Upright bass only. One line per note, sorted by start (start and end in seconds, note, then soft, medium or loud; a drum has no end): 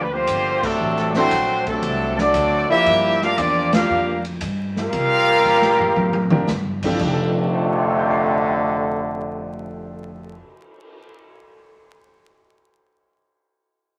0.00 0.27 D2 medium
0.28 0.78 G1 medium
0.80 1.30 A1 medium
1.31 1.81 A#1 medium
1.82 2.33 C2 medium
2.34 2.67 D2 loud
2.71 muted upright bass stroke soft
2.86 3.36 G2 medium
3.38 3.88 E2 loud
3.90 4.40 F2 medium
4.41 4.91 G2 loud
4.93 5.43 C3 medium
5.44 5.95 A#2 medium
5.96 6.46 A2 medium
6.48 6.98 G2 loud
6.99 10.41 F1 loud